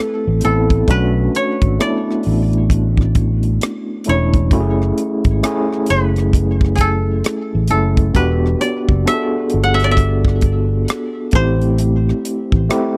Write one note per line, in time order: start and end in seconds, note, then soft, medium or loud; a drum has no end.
0.00 0.88 A3 medium
0.00 0.44 C4 medium
0.00 0.45 E4 medium
0.00 0.44 A4 medium
0.00 0.46 A4 medium
0.00 0.90 B4 medium
0.00 cross-stick loud
0.28 0.41 A1 medium
0.41 0.82 B3 medium
0.41 0.82 C4 medium
0.41 0.82 E4 medium
0.41 2.35 A4 medium
0.41 closed hi-hat medium
0.45 0.82 A1 medium
0.45 0.83 A4 medium
0.70 kick medium
0.70 closed hi-hat soft
0.88 1.27 B1 loud
0.88 1.65 A3 medium
0.88 1.66 C#4 medium
0.88 1.66 D4 medium
0.88 1.66 F#4 medium
0.88 2.68 B4 medium
0.88 kick loud
0.88 closed hi-hat medium
1.35 1.87 C#5 medium
1.35 closed hi-hat medium
1.62 1.77 G#1 medium
1.62 kick medium
1.62 closed hi-hat soft
1.79 3.28 A3 medium
1.79 3.28 B3 medium
1.79 3.29 D4 medium
1.79 3.29 E4 medium
1.79 3.41 D5 medium
1.79 cross-stick loud
1.79 closed hi-hat medium
2.11 cross-stick soft
2.23 3.58 A1 medium
2.23 open hi-hat soft
2.53 closed hi-hat soft
2.70 kick medium
2.70 closed hi-hat medium
2.97 kick medium
2.97 cross-stick soft
3.15 kick medium
3.15 closed hi-hat medium
3.43 closed hi-hat soft
3.61 cross-stick loud
3.61 closed hi-hat medium
4.04 4.45 A3 medium
4.04 4.45 C#4 soft
4.04 4.45 D4 medium
4.04 4.46 E4 medium
4.04 closed hi-hat medium
4.09 4.52 E1 medium
4.09 5.85 C#5 medium
4.34 kick medium
4.34 closed hi-hat soft
4.51 4.90 F#1 loud
4.51 5.30 A3 medium
4.51 5.30 C#4 medium
4.51 5.30 E4 medium
4.51 4.61 F#4 medium
4.51 kick loud
4.51 closed hi-hat medium
4.60 5.33 G#4 medium
4.82 cross-stick soft
4.98 closed hi-hat medium
5.24 5.40 G#1 medium
5.24 kick medium
5.24 closed hi-hat soft
5.43 6.92 A3 medium
5.43 6.92 C#4 medium
5.43 6.93 E4 medium
5.43 6.93 G#4 medium
5.43 cross-stick loud
5.43 closed hi-hat medium
5.73 cross-stick soft
5.86 7.21 F#1 medium
5.86 7.68 B4 medium
5.86 closed hi-hat medium
6.16 cross-stick soft
6.16 closed hi-hat soft
6.33 kick medium
6.33 closed hi-hat medium
6.61 kick medium
6.61 cross-stick soft
6.75 6.87 G#4 medium
6.75 kick medium
6.75 closed hi-hat medium
6.81 7.70 A4 medium
7.24 cross-stick loud
7.24 closed hi-hat medium
7.55 7.68 A1 medium
7.68 8.08 A3 medium
7.68 8.09 C#4 medium
7.68 8.09 E4 medium
7.68 9.61 A4 medium
7.68 8.09 A4 medium
7.68 closed hi-hat medium
7.72 8.10 F#1 medium
7.97 kick medium
7.97 closed hi-hat soft
8.14 8.54 E1 medium
8.14 8.92 B3 medium
8.14 8.92 D4 medium
8.14 8.93 F#4 medium
8.14 8.93 G4 medium
8.14 9.94 B4 medium
8.14 kick loud
8.14 closed hi-hat medium
8.46 cross-stick soft
8.61 9.84 D5 medium
8.61 closed hi-hat medium
8.89 9.04 F#1 medium
8.89 kick medium
9.05 10.55 B3 medium
9.05 10.55 D4 medium
9.05 10.55 F#4 medium
9.05 9.15 G#4 medium
9.05 9.74 E5 medium
9.05 cross-stick loud
9.05 closed hi-hat medium
9.14 10.59 A4 medium
9.50 closed hi-hat medium
9.54 10.85 G1 medium
9.64 11.03 F#5 medium
9.74 9.91 E5 medium
9.80 cross-stick soft
9.80 closed hi-hat soft
9.84 11.44 D5 medium
9.91 11.41 E5 medium
9.97 kick medium
9.97 closed hi-hat medium
10.25 kick medium
10.25 cross-stick soft
10.41 kick medium
10.41 closed hi-hat medium
10.88 cross-stick loud
10.88 closed hi-hat medium
11.31 12.11 A1 medium
11.31 12.47 A3 medium
11.31 12.48 C4 medium
11.31 12.48 E4 medium
11.31 12.48 G4 medium
11.31 12.97 C5 medium
11.31 kick medium
11.31 closed hi-hat medium
11.61 closed hi-hat soft
11.78 closed hi-hat medium
12.09 cross-stick soft
12.25 closed hi-hat medium
12.52 12.67 A1 medium
12.52 kick medium
12.69 12.97 A3 medium
12.69 12.97 C4 medium
12.69 12.97 E4 medium
12.69 12.97 G4 medium
12.69 cross-stick loud
12.69 closed hi-hat medium